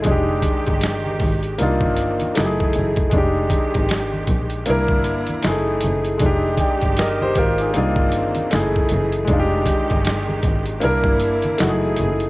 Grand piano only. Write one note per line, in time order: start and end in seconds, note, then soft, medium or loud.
0.02 1.54 G#3 medium
0.02 1.56 D4 medium
0.08 1.57 D#4 medium
0.08 1.59 G4 medium
1.58 2.35 A#3 medium
1.58 2.36 D4 medium
1.58 2.35 D#4 medium
1.63 2.38 F4 medium
2.35 3.12 A3 medium
2.35 3.13 D#4 medium
2.35 3.14 E4 medium
2.39 2.45 G4 medium
2.46 3.18 G#4 medium
3.10 4.62 G#3 medium
3.10 4.63 D4 medium
3.15 4.65 D#4 medium
3.15 4.66 G4 medium
4.66 5.43 A#3 medium
4.66 5.44 D4 medium
4.66 5.44 E4 medium
4.70 5.45 A#4 medium
5.43 5.51 G#3 medium
5.43 6.21 D#4 medium
5.43 6.21 E4 medium
5.47 6.23 A3 medium
5.47 6.22 G#4 medium
6.17 7.70 G#3 medium
6.17 6.58 D4 medium
6.23 6.59 D#4 medium
6.23 6.61 G4 medium
6.60 6.96 D5 medium
6.60 6.96 G5 medium
6.98 7.21 A#4 medium
6.98 7.20 D#5 medium
7.22 7.36 G4 medium
7.22 7.36 C5 medium
7.38 7.59 F4 medium
7.38 7.59 A#4 medium
7.61 7.75 D#4 medium
7.61 7.97 G#4 medium
7.73 8.51 A#3 medium
7.73 8.51 D4 medium
7.73 8.50 D#4 medium
7.78 8.53 F4 medium
8.51 9.28 A3 medium
8.51 9.28 D#4 medium
8.51 9.29 E4 medium
8.55 9.30 G#4 medium
9.25 10.77 G#3 medium
9.25 10.79 D4 medium
9.30 10.80 D#4 medium
9.30 9.38 F4 medium
9.40 10.85 G4 medium
10.81 11.58 A#3 medium
10.81 11.59 D4 medium
10.81 11.59 E4 medium
10.85 11.60 A#4 medium
11.58 12.30 A3 medium
11.58 12.30 D#4 medium
11.58 12.30 E4 medium
11.62 11.68 F#4 medium
11.69 12.30 G#4 medium